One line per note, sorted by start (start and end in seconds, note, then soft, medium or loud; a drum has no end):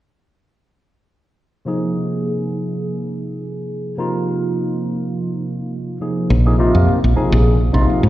1.65 3.94 C3 medium
1.65 3.94 F3 medium
1.65 3.95 A#3 soft
1.65 3.95 D#4 soft
1.65 3.95 G#4 medium
3.97 5.96 C3 medium
3.97 5.97 F3 medium
3.97 5.97 A#3 medium
3.97 5.97 D#4 medium
3.97 5.98 F4 medium
6.00 6.30 C3 soft
6.00 6.30 F3 soft
6.00 6.30 A#3 soft
6.00 6.30 D#4 soft
6.00 6.30 G#4 soft
6.30 6.71 A#1 medium
6.45 6.54 C3 medium
6.45 6.55 F3 medium
6.45 6.55 A#3 medium
6.45 6.55 D#4 medium
6.45 6.55 G#4 medium
6.58 6.98 C3 medium
6.58 6.98 F3 medium
6.58 6.98 A#3 medium
6.58 6.98 D#4 medium
6.58 6.99 F4 medium
6.75 6.87 F2 medium
6.88 muted fretless electric bass stroke soft
7.04 7.16 A#1 medium
7.15 7.55 C3 medium
7.15 7.55 F3 medium
7.15 7.55 A#3 medium
7.15 7.56 D#4 medium
7.15 7.56 G#4 medium
7.15 muted fretless electric bass stroke soft
7.32 7.71 A#1 medium
7.73 7.88 A#1 medium
7.73 8.02 C3 medium
7.73 8.02 F3 medium
7.73 8.03 A#3 medium
7.73 8.03 D#4 medium
7.73 8.03 F4 medium
7.90 muted fretless electric bass stroke soft
8.03 8.09 A#2 medium